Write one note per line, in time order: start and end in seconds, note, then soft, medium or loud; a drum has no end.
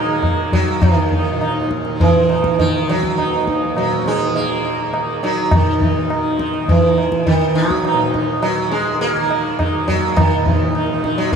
0.00 0.69 D#2 soft
0.00 1.30 A#2 soft
0.00 0.08 D#3 soft
0.00 0.53 A#3 medium
0.00 0.22 D#4 soft
0.08 1.90 D#3 medium
0.23 tabla na medium
0.23 tabla ge medium
0.52 0.83 F#3 medium
0.52 tabla ge soft
0.69 3.12 D#2 medium
0.82 1.67 D#3 medium
0.82 tabla na medium
0.82 tabla ge medium
1.11 1.39 D#4 soft
1.11 tabla ge medium
1.30 3.74 A#2 medium
1.41 1.69 D#4 soft
1.41 tabla na medium
1.71 tabla ke medium
1.85 tabla te medium
1.90 2.51 D#3 medium
2.00 2.61 E3 medium
2.00 tabla tin medium
2.00 tabla ge medium
2.30 2.57 D#4 soft
2.30 tabla na medium
2.44 tabla ke medium
2.51 4.33 D#3 medium
2.59 2.90 D#3 medium
2.59 tabla tin medium
2.59 tabla ge medium
2.88 3.44 F#3 medium
2.88 tabla na medium
3.03 tabla ke soft
3.12 7.34 D#2 medium
3.18 3.45 D#4 soft
3.18 tabla na medium
3.48 3.75 D#4 soft
3.48 tabla ke medium
3.74 5.53 A#2 medium
3.74 4.05 F#3 medium
3.74 tabla na medium
4.06 4.37 G#3 medium
4.06 4.34 D#4 soft
4.06 tabla te medium
4.33 4.94 D#3 medium
4.33 5.26 A#3 medium
4.33 tabla tin medium
4.65 tabla na medium
4.94 6.13 D#3 soft
4.94 tabla na medium
5.23 5.53 F#3 medium
5.23 5.50 D#4 soft
5.23 tabla te medium
5.51 7.93 A#2 medium
5.51 6.36 D#3 medium
5.51 tabla na loud
5.51 tabla ge medium
5.80 6.08 D#4 soft
5.80 tabla ge medium
6.10 6.73 D#3 medium
6.10 tabla na medium
6.39 6.67 D#4 soft
6.39 tabla ke medium
6.54 tabla te medium
6.68 7.26 E3 medium
6.68 tabla tin medium
6.68 tabla ge medium
6.73 8.54 D#3 medium
6.98 tabla na medium
7.12 tabla ke medium
7.26 7.57 D#3 medium
7.26 tabla tin medium
7.26 tabla ge medium
7.34 9.74 D#2 medium
7.55 8.10 F#3 loud
7.55 tabla na medium
7.70 tabla ke medium
7.85 8.12 D#4 soft
7.85 tabla na medium
7.94 10.34 A#2 medium
8.14 8.41 D#4 soft
8.14 tabla ke soft
8.42 8.71 F#3 medium
8.42 tabla na medium
8.54 9.14 D#3 medium
8.71 9.01 G#3 medium
8.71 tabla te medium
9.01 9.87 A#3 loud
9.01 tabla tin medium
9.14 10.93 D#3 medium
9.31 tabla na medium
9.59 9.87 D#4 soft
9.59 tabla na medium
9.59 tabla ge medium
9.74 11.36 D#2 medium
9.88 10.18 F#3 medium
9.88 tabla ge medium
10.16 10.99 D#3 loud
10.16 tabla na medium
10.16 tabla ge medium
10.35 11.36 A#2 medium
10.46 10.73 D#4 soft
10.46 tabla ge medium
10.75 11.02 D#4 soft
10.75 tabla na medium
10.93 11.36 D#3 medium
11.04 11.31 D#4 soft
11.04 tabla ke medium
11.18 11.32 F#3 medium
11.18 tabla te medium
11.32 11.36 A#3 medium
11.32 tabla tin medium
11.32 tabla ge medium